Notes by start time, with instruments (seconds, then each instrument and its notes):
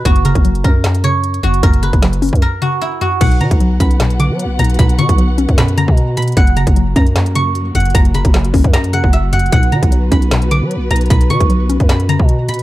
Already playing: guzheng B4 C#5
0.05 808-style bass F#1, synth pluck F#2, guzheng F#4, kick, closed hi-hat
0.16 closed hi-hat
0.25 synth pluck C#3, guzheng A#4, closed hi-hat
0.35 808-style bass F#1, kick, closed hi-hat
0.45 synth pluck F#3, closed hi-hat
0.55 closed hi-hat
0.64 808-style bass F#2, synth pluck C#4, guzheng A#4, kick, closed hi-hat
0.84 synth pluck F#2, snare, clap, closed hi-hat
0.95 closed hi-hat
1.04 synth pluck C#3, guzheng C#5, closed hi-hat
1.24 closed hi-hat
1.34 closed hi-hat
1.43 808-style bass F#1, synth pluck F#2, guzheng F#4
1.54 closed hi-hat
1.63 808-style bass F#1, synth pluck F#2, guzheng A#4, kick, closed hi-hat
1.74 closed hi-hat
1.83 synth pluck C#3, guzheng B4, closed hi-hat
1.93 808-style bass F#1, kick, closed hi-hat
2.02 synth pluck F#3, snare, clap, closed hi-hat
2.13 closed hi-hat
2.22 synth pluck C#4, closed hi-hat, open hi-hat
2.29 kick, closed hi-hat
2.33 808-style bass F#2, closed hi-hat
2.42 synth pluck F#2, guzheng A#4
2.62 synth pluck C#3, guzheng F#4
2.81 guzheng E4
3.01 synth pluck F#2, guzheng F#4
3.21 808-style bass B1, synth pluck B2, string section B3 F#4 B4 F#5, guzheng F#5, kick, closed hi-hat, crash
3.31 closed hi-hat
3.41 808-style bass B2, synth pluck D3, guzheng A#5, closed hi-hat
3.51 808-style bass B1, kick, closed hi-hat
3.60 synth pluck F#3, closed hi-hat
3.80 808-style bass B1, synth pluck C#4, guzheng B5, kick, closed hi-hat
3.91 closed hi-hat
4.00 synth pluck B2, snare, clap, closed hi-hat
4.10 closed hi-hat
4.20 synth pluck D3, guzheng D6, closed hi-hat
4.30 808-style bass F#3
4.39 closed hi-hat
4.45 808-style bass B1
4.59 808-style bass B1, synth pluck B2, guzheng A#5, closed hi-hat
4.64 closed hi-hat
4.70 closed hi-hat
4.74 closed hi-hat
4.79 808-style bass B1, synth pluck B2, guzheng B5, kick, closed hi-hat
4.89 closed hi-hat
4.98 808-style bass B2, synth pluck D3, guzheng C#6, closed hi-hat
5.09 808-style bass B1, kick, closed hi-hat
5.18 synth pluck F#3, closed hi-hat
5.38 synth pluck C#4, closed hi-hat
5.49 808-style bass F#2, kick, closed hi-hat
5.58 synth pluck B2, guzheng B5, snare, clap, closed hi-hat
5.68 closed hi-hat
5.77 synth pluck D3, guzheng A#5, closed hi-hat
5.88 808-style bass B2, kick
5.97 closed hi-hat
6.17 synth pluck B2, guzheng B5, closed hi-hat
6.22 closed hi-hat
6.28 closed hi-hat
6.32 closed hi-hat
6.36 808-style bass F#1, synth pluck F#2, string section F#3 A#3 F#4, guzheng F#5, kick, closed hi-hat
6.47 closed hi-hat
6.57 synth pluck C#3, guzheng A#5, closed hi-hat
6.67 808-style bass F#1, kick, closed hi-hat
6.76 synth pluck F#3, closed hi-hat
6.96 808-style bass F#2, synth pluck C#4, guzheng A#5, kick, closed hi-hat
7.06 closed hi-hat
7.16 synth pluck F#2, snare, clap, closed hi-hat
7.26 closed hi-hat
7.35 synth pluck C#3, guzheng C#6, closed hi-hat
7.55 closed hi-hat
7.75 808-style bass F#1, synth pluck F#2, guzheng F#5, closed hi-hat
7.80 closed hi-hat
7.85 closed hi-hat
7.90 closed hi-hat
7.94 808-style bass F#1, synth pluck F#2, guzheng A#5, kick, closed hi-hat
8.05 closed hi-hat
8.14 synth pluck C#3, guzheng B5, closed hi-hat
8.25 808-style bass F#1, kick, closed hi-hat
8.34 synth pluck F#3, snare, clap, closed hi-hat
8.45 closed hi-hat
8.54 808-style bass F#1, synth pluck C#4, kick, open hi-hat
8.64 808-style bass F#2, kick, closed hi-hat
8.73 synth pluck F#2, guzheng A#5, snare, clap, closed hi-hat
8.84 closed hi-hat
8.93 synth pluck C#3, guzheng F#5, closed hi-hat
9.04 808-style bass F#1, kick
9.13 guzheng E5, closed hi-hat
9.33 synth pluck F#2, guzheng F#5, closed hi-hat
9.39 closed hi-hat
9.46 closed hi-hat
9.52 808-style bass B1, synth pluck B2, string section B3 B4, guzheng F#5, kick, closed hi-hat
9.63 closed hi-hat
9.72 808-style bass B2, synth pluck D3, guzheng A#5, closed hi-hat
9.83 808-style bass B1, kick, closed hi-hat
9.92 synth pluck F#3, closed hi-hat
10.12 808-style bass B1, synth pluck C#4, guzheng B5, kick, closed hi-hat
10.22 closed hi-hat
10.31 synth pluck B2, snare, clap, closed hi-hat
10.42 closed hi-hat
10.51 synth pluck D3, guzheng D6, closed hi-hat
10.62 808-style bass F#3
10.71 closed hi-hat
10.76 808-style bass B1
10.90 808-style bass B1, synth pluck B2, guzheng A#5, closed hi-hat
10.96 closed hi-hat
11.01 closed hi-hat
11.06 closed hi-hat
11.10 808-style bass B1, synth pluck B2, guzheng B5, kick, closed hi-hat
11.21 closed hi-hat
11.30 808-style bass B2, synth pluck D3, guzheng C#6, closed hi-hat
11.40 808-style bass B1, kick, closed hi-hat
11.50 synth pluck F#3, closed hi-hat
11.69 synth pluck C#4, closed hi-hat
11.80 808-style bass F#2, kick, closed hi-hat
11.89 synth pluck B2, guzheng B5, snare, clap, closed hi-hat
12.00 closed hi-hat
12.09 synth pluck D3, guzheng A#5, closed hi-hat
12.20 808-style bass B2, kick
12.29 closed hi-hat
12.49 synth pluck B2, guzheng B5, closed hi-hat
12.54 closed hi-hat
12.59 closed hi-hat